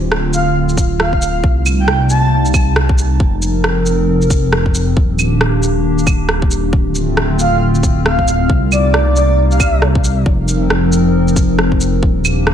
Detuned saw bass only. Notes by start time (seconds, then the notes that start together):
Already playing: D1
1.44 C2
3.20 F1
4.97 D#1
6.73 D1
8.49 C2
10.26 F1
12.03 D#1